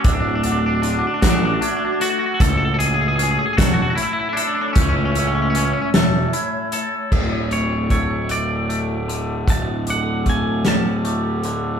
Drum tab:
CC |------|------|------|x-----|
HH |xxxxxx|xxxxxx|xxxxxx|-xxxxx|
SD |---o--|---o--|---o--|------|
BD |o--o--|o--o--|o-----|o-o---|

CC |------|
HH |xxxxxx|
SD |---o--|
BD |o-o---|